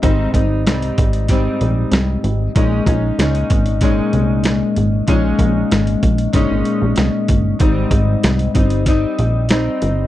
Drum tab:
HH |x-x-xxxxx-x-x-x-|x-x-xxxxx-x-x-x-|x-x-xxxxx-x-x-x-|x-x-xxxxx-x-x-x-|
SD |----o---o---o---|----o---o---o---|----o---o---o---|----o---o---o---|
BD |o-o---o-o-------|o-o---o-o-------|o-o---o-o-----o-|o-o---o-o-------|